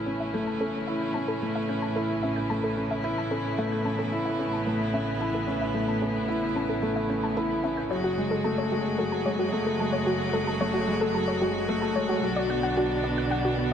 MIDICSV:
0, 0, Header, 1, 5, 480
1, 0, Start_track
1, 0, Key_signature, 3, "major"
1, 0, Tempo, 540541
1, 1265, Time_signature, 4, 2, 24, 8
1, 12193, End_track
2, 0, Start_track
2, 0, Title_t, "Synth arpeggio sound"
2, 0, Program_c, 0, 84
2, 179, Note_on_c, 0, 76, 91
2, 296, Note_off_c, 0, 76, 0
2, 302, Note_on_c, 0, 91, 75
2, 384, Note_off_c, 0, 91, 0
2, 420, Note_on_c, 0, 81, 91
2, 503, Note_off_c, 0, 81, 0
2, 539, Note_on_c, 0, 69, 97
2, 623, Note_off_c, 0, 69, 0
2, 776, Note_on_c, 0, 76, 91
2, 894, Note_off_c, 0, 76, 0
2, 898, Note_on_c, 0, 91, 65
2, 982, Note_off_c, 0, 91, 0
2, 1012, Note_on_c, 0, 81, 96
2, 1099, Note_off_c, 0, 81, 0
2, 1138, Note_on_c, 0, 69, 101
2, 1223, Note_off_c, 0, 69, 0
2, 1380, Note_on_c, 0, 76, 103
2, 1496, Note_off_c, 0, 76, 0
2, 1499, Note_on_c, 0, 91, 76
2, 1583, Note_off_c, 0, 91, 0
2, 1618, Note_on_c, 0, 81, 92
2, 1702, Note_off_c, 0, 81, 0
2, 1739, Note_on_c, 0, 69, 96
2, 1823, Note_off_c, 0, 69, 0
2, 1977, Note_on_c, 0, 76, 81
2, 2095, Note_off_c, 0, 76, 0
2, 2097, Note_on_c, 0, 91, 77
2, 2182, Note_off_c, 0, 91, 0
2, 2219, Note_on_c, 0, 81, 103
2, 2303, Note_off_c, 0, 81, 0
2, 2341, Note_on_c, 0, 69, 94
2, 2424, Note_off_c, 0, 69, 0
2, 2583, Note_on_c, 0, 76, 97
2, 2698, Note_off_c, 0, 76, 0
2, 2701, Note_on_c, 0, 91, 75
2, 2784, Note_off_c, 0, 91, 0
2, 2824, Note_on_c, 0, 81, 96
2, 2905, Note_off_c, 0, 81, 0
2, 2942, Note_on_c, 0, 69, 92
2, 3024, Note_off_c, 0, 69, 0
2, 3184, Note_on_c, 0, 76, 98
2, 3298, Note_off_c, 0, 76, 0
2, 3303, Note_on_c, 0, 91, 76
2, 3385, Note_off_c, 0, 91, 0
2, 3422, Note_on_c, 0, 81, 101
2, 3505, Note_off_c, 0, 81, 0
2, 3540, Note_on_c, 0, 69, 101
2, 3623, Note_off_c, 0, 69, 0
2, 3778, Note_on_c, 0, 76, 97
2, 3895, Note_off_c, 0, 76, 0
2, 3903, Note_on_c, 0, 91, 69
2, 3985, Note_off_c, 0, 91, 0
2, 4024, Note_on_c, 0, 81, 100
2, 4105, Note_off_c, 0, 81, 0
2, 4146, Note_on_c, 0, 69, 97
2, 4226, Note_off_c, 0, 69, 0
2, 4386, Note_on_c, 0, 76, 105
2, 4499, Note_off_c, 0, 76, 0
2, 4506, Note_on_c, 0, 91, 72
2, 4587, Note_off_c, 0, 91, 0
2, 4629, Note_on_c, 0, 81, 100
2, 4708, Note_off_c, 0, 81, 0
2, 4746, Note_on_c, 0, 69, 90
2, 4826, Note_off_c, 0, 69, 0
2, 4985, Note_on_c, 0, 76, 106
2, 5099, Note_off_c, 0, 76, 0
2, 5109, Note_on_c, 0, 91, 81
2, 5188, Note_off_c, 0, 91, 0
2, 5226, Note_on_c, 0, 81, 96
2, 5307, Note_off_c, 0, 81, 0
2, 5345, Note_on_c, 0, 69, 101
2, 5426, Note_off_c, 0, 69, 0
2, 5586, Note_on_c, 0, 76, 92
2, 5699, Note_off_c, 0, 76, 0
2, 5708, Note_on_c, 0, 91, 72
2, 5787, Note_off_c, 0, 91, 0
2, 5825, Note_on_c, 0, 81, 90
2, 5906, Note_off_c, 0, 81, 0
2, 5944, Note_on_c, 0, 69, 97
2, 6025, Note_off_c, 0, 69, 0
2, 6181, Note_on_c, 0, 76, 97
2, 6297, Note_off_c, 0, 76, 0
2, 6302, Note_on_c, 0, 91, 76
2, 6385, Note_off_c, 0, 91, 0
2, 6425, Note_on_c, 0, 81, 93
2, 6506, Note_off_c, 0, 81, 0
2, 6544, Note_on_c, 0, 69, 96
2, 6625, Note_off_c, 0, 69, 0
2, 6781, Note_on_c, 0, 76, 96
2, 6897, Note_off_c, 0, 76, 0
2, 6901, Note_on_c, 0, 91, 76
2, 6984, Note_off_c, 0, 91, 0
2, 7020, Note_on_c, 0, 73, 97
2, 7104, Note_off_c, 0, 73, 0
2, 7140, Note_on_c, 0, 66, 97
2, 7224, Note_off_c, 0, 66, 0
2, 7379, Note_on_c, 0, 69, 101
2, 7496, Note_off_c, 0, 69, 0
2, 7498, Note_on_c, 0, 81, 83
2, 7582, Note_off_c, 0, 81, 0
2, 7619, Note_on_c, 0, 73, 98
2, 7703, Note_off_c, 0, 73, 0
2, 7740, Note_on_c, 0, 66, 86
2, 7823, Note_off_c, 0, 66, 0
2, 7979, Note_on_c, 0, 69, 98
2, 8096, Note_off_c, 0, 69, 0
2, 8099, Note_on_c, 0, 81, 78
2, 8183, Note_off_c, 0, 81, 0
2, 8220, Note_on_c, 0, 73, 107
2, 8304, Note_off_c, 0, 73, 0
2, 8340, Note_on_c, 0, 66, 98
2, 8424, Note_off_c, 0, 66, 0
2, 8583, Note_on_c, 0, 69, 87
2, 8698, Note_off_c, 0, 69, 0
2, 8702, Note_on_c, 0, 81, 71
2, 8785, Note_off_c, 0, 81, 0
2, 8814, Note_on_c, 0, 73, 98
2, 8901, Note_off_c, 0, 73, 0
2, 8938, Note_on_c, 0, 66, 99
2, 9022, Note_off_c, 0, 66, 0
2, 9177, Note_on_c, 0, 69, 110
2, 9295, Note_off_c, 0, 69, 0
2, 9301, Note_on_c, 0, 81, 77
2, 9384, Note_off_c, 0, 81, 0
2, 9419, Note_on_c, 0, 73, 106
2, 9503, Note_off_c, 0, 73, 0
2, 9535, Note_on_c, 0, 66, 94
2, 9621, Note_off_c, 0, 66, 0
2, 9778, Note_on_c, 0, 69, 101
2, 9895, Note_off_c, 0, 69, 0
2, 9899, Note_on_c, 0, 81, 82
2, 9983, Note_off_c, 0, 81, 0
2, 10013, Note_on_c, 0, 73, 101
2, 10100, Note_off_c, 0, 73, 0
2, 10138, Note_on_c, 0, 66, 109
2, 10222, Note_off_c, 0, 66, 0
2, 10377, Note_on_c, 0, 69, 98
2, 10495, Note_off_c, 0, 69, 0
2, 10495, Note_on_c, 0, 81, 70
2, 10581, Note_off_c, 0, 81, 0
2, 10617, Note_on_c, 0, 73, 98
2, 10702, Note_off_c, 0, 73, 0
2, 10736, Note_on_c, 0, 66, 103
2, 10821, Note_off_c, 0, 66, 0
2, 10979, Note_on_c, 0, 74, 106
2, 11096, Note_off_c, 0, 74, 0
2, 11099, Note_on_c, 0, 90, 75
2, 11183, Note_off_c, 0, 90, 0
2, 11217, Note_on_c, 0, 78, 103
2, 11302, Note_off_c, 0, 78, 0
2, 11342, Note_on_c, 0, 66, 105
2, 11424, Note_off_c, 0, 66, 0
2, 11579, Note_on_c, 0, 74, 90
2, 11696, Note_off_c, 0, 74, 0
2, 11702, Note_on_c, 0, 90, 77
2, 11784, Note_off_c, 0, 90, 0
2, 11820, Note_on_c, 0, 78, 104
2, 11903, Note_off_c, 0, 78, 0
2, 11942, Note_on_c, 0, 66, 109
2, 12024, Note_off_c, 0, 66, 0
2, 12193, End_track
3, 0, Start_track
3, 0, Title_t, "Felt piano"
3, 0, Program_c, 1, 0
3, 0, Control_c, 1, 64, 127
3, 0, Note_on_c, 1, 61, 66
3, 0, Note_on_c, 1, 64, 83
3, 56, Note_off_c, 1, 61, 0
3, 56, Note_on_c, 1, 61, 66
3, 288, Note_off_c, 1, 61, 0
3, 300, Note_on_c, 1, 57, 85
3, 530, Note_off_c, 1, 57, 0
3, 536, Note_on_c, 1, 61, 72
3, 677, Note_off_c, 1, 61, 0
3, 778, Note_off_c, 1, 64, 0
3, 778, Note_on_c, 1, 64, 86
3, 1009, Note_off_c, 1, 64, 0
3, 1018, Note_on_c, 1, 61, 66
3, 1249, Note_off_c, 1, 61, 0
3, 1258, Note_on_c, 1, 57, 74
3, 1398, Note_off_c, 1, 57, 0
3, 1499, Note_on_c, 1, 61, 66
3, 1639, Note_off_c, 1, 61, 0
3, 1741, Note_on_c, 1, 64, 88
3, 1971, Note_off_c, 1, 64, 0
3, 1983, Note_on_c, 1, 61, 69
3, 2212, Note_off_c, 1, 61, 0
3, 2222, Note_on_c, 1, 57, 75
3, 2360, Note_off_c, 1, 57, 0
3, 2460, Note_on_c, 1, 61, 67
3, 2690, Note_off_c, 1, 61, 0
3, 2696, Note_on_c, 1, 64, 100
3, 2837, Note_off_c, 1, 64, 0
3, 2936, Note_on_c, 1, 61, 73
3, 3168, Note_off_c, 1, 61, 0
3, 3176, Note_on_c, 1, 57, 97
3, 3408, Note_off_c, 1, 57, 0
3, 3421, Note_on_c, 1, 61, 68
3, 3559, Note_off_c, 1, 61, 0
3, 3659, Note_on_c, 1, 64, 94
3, 3890, Note_off_c, 1, 64, 0
3, 3899, Note_on_c, 1, 61, 71
3, 4130, Note_off_c, 1, 61, 0
3, 4139, Note_on_c, 1, 57, 76
3, 4279, Note_off_c, 1, 57, 0
3, 4377, Note_on_c, 1, 61, 72
3, 4518, Note_off_c, 1, 61, 0
3, 4620, Note_on_c, 1, 64, 98
3, 4850, Note_off_c, 1, 64, 0
3, 4857, Note_on_c, 1, 61, 76
3, 5089, Note_off_c, 1, 61, 0
3, 5097, Note_on_c, 1, 57, 79
3, 5237, Note_off_c, 1, 57, 0
3, 5342, Note_on_c, 1, 61, 67
3, 5571, Note_off_c, 1, 61, 0
3, 5577, Note_on_c, 1, 64, 88
3, 5718, Note_off_c, 1, 64, 0
3, 5820, Note_on_c, 1, 61, 69
3, 6050, Note_off_c, 1, 61, 0
3, 6057, Note_on_c, 1, 57, 96
3, 6289, Note_off_c, 1, 57, 0
3, 6300, Note_on_c, 1, 61, 67
3, 6439, Note_off_c, 1, 61, 0
3, 6542, Note_on_c, 1, 64, 98
3, 6771, Note_off_c, 1, 64, 0
3, 6781, Note_on_c, 1, 61, 71
3, 7011, Note_off_c, 1, 61, 0
3, 7019, Note_on_c, 1, 54, 80
3, 7037, Control_c, 1, 64, 0
3, 7158, Note_off_c, 1, 54, 0
3, 7177, Control_c, 1, 64, 127
3, 7262, Note_on_c, 1, 56, 70
3, 7491, Note_off_c, 1, 56, 0
3, 7500, Note_on_c, 1, 57, 89
3, 7639, Note_off_c, 1, 57, 0
3, 7742, Note_on_c, 1, 56, 73
3, 7971, Note_off_c, 1, 56, 0
3, 7978, Note_on_c, 1, 54, 90
3, 8209, Note_off_c, 1, 54, 0
3, 8221, Note_on_c, 1, 56, 74
3, 8359, Note_off_c, 1, 56, 0
3, 8458, Note_on_c, 1, 57, 97
3, 8690, Note_off_c, 1, 57, 0
3, 8694, Note_on_c, 1, 56, 75
3, 8927, Note_off_c, 1, 56, 0
3, 8937, Note_on_c, 1, 54, 79
3, 9077, Note_off_c, 1, 54, 0
3, 9177, Note_on_c, 1, 56, 74
3, 9317, Note_off_c, 1, 56, 0
3, 9417, Note_on_c, 1, 57, 98
3, 9649, Note_off_c, 1, 57, 0
3, 9657, Note_on_c, 1, 56, 74
3, 9888, Note_off_c, 1, 56, 0
3, 9897, Note_on_c, 1, 54, 79
3, 10037, Note_off_c, 1, 54, 0
3, 10133, Note_on_c, 1, 56, 76
3, 10367, Note_off_c, 1, 56, 0
3, 10378, Note_on_c, 1, 57, 103
3, 10518, Note_off_c, 1, 57, 0
3, 10620, Note_on_c, 1, 56, 76
3, 10850, Note_off_c, 1, 56, 0
3, 10855, Note_on_c, 1, 54, 100
3, 10877, Control_c, 1, 64, 0
3, 11040, Control_c, 1, 64, 127
3, 11088, Note_off_c, 1, 54, 0
3, 11095, Note_on_c, 1, 59, 75
3, 11236, Note_off_c, 1, 59, 0
3, 11337, Note_on_c, 1, 62, 105
3, 11569, Note_off_c, 1, 62, 0
3, 11574, Note_on_c, 1, 59, 78
3, 11807, Note_off_c, 1, 59, 0
3, 11810, Note_on_c, 1, 54, 83
3, 11954, Note_off_c, 1, 54, 0
3, 12052, Note_on_c, 1, 59, 78
3, 12193, Note_off_c, 1, 59, 0
3, 12193, End_track
4, 0, Start_track
4, 0, Title_t, "String quartet"
4, 0, Program_c, 2, 48
4, 0, Note_on_c, 2, 45, 68
4, 0, Note_on_c, 2, 49, 66
4, 0, Note_on_c, 2, 52, 68
4, 0, Note_on_c, 2, 61, 66
4, 0, Note_on_c, 2, 64, 72
4, 3152, Note_off_c, 2, 61, 0
4, 3180, Note_on_c, 2, 59, 66
4, 6987, Note_off_c, 2, 59, 0
4, 6991, Note_off_c, 2, 45, 0
4, 6992, Note_off_c, 2, 52, 0
4, 6993, Note_off_c, 2, 64, 0
4, 7025, Note_on_c, 2, 54, 69
4, 7026, Note_on_c, 2, 68, 68
4, 7027, Note_on_c, 2, 66, 87
4, 10830, Note_off_c, 2, 68, 0
4, 10831, Note_off_c, 2, 49, 0
4, 10855, Note_on_c, 2, 47, 83
4, 10856, Note_on_c, 2, 62, 74
4, 10858, Note_on_c, 2, 50, 77
4, 12193, Note_off_c, 2, 47, 0
4, 12193, Note_off_c, 2, 50, 0
4, 12193, Note_off_c, 2, 54, 0
4, 12193, Note_off_c, 2, 62, 0
4, 12193, Note_off_c, 2, 66, 0
4, 12193, End_track
5, 0, Start_track
5, 0, Title_t, "Double bass section"
5, 0, Program_c, 3, 48
5, 0, Note_on_c, 3, 33, 69
5, 7000, Note_off_c, 3, 33, 0
5, 7023, Note_on_c, 3, 30, 82
5, 10840, Note_off_c, 3, 30, 0
5, 10866, Note_on_c, 3, 35, 91
5, 12193, Note_off_c, 3, 35, 0
5, 12193, End_track
0, 0, End_of_file